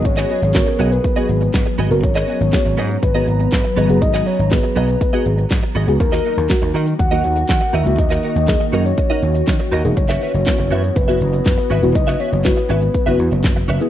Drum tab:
HH |x-x-x-x-x-x-x-x-|x-x-x-x-x-x-x-x-|x-x-x-x-x-x-x-x-|x-x-x-x-x-x-x-x-|
SH |xxxxxxxxxxxxxxxx|xxxxxxxxxxxxxxxx|xxxxxxxxxxxxxxxx|xxxxxxxxxxxxxxxx|
CP |-x--x-------x---|-x--x-------x---|-x--x-------x---|-x--x-------x---|
SD |----o-------o---|----o-------o---|----o-------o---|----o-------o---|
BD |o---o---o---o---|o---o---o---o---|o---o---o---o---|o---o---o---o---|

HH |x-x-x-x-x-x-x-x-|x-x-x-x-x-x-x-x-|x-x-x-x-x-x-x-x-|
SH |xxxxxxxxxxxxxxxx|xxxxxxxxxxxxxxxx|xxxxxxxxxxxxxxxx|
CP |-x--x-------x---|-x--x-------x---|-x--x-------x---|
SD |----o-------o---|----o-------o---|----o-------o---|
BD |o---o---o---o---|o---o---o---o---|o---o---o---o---|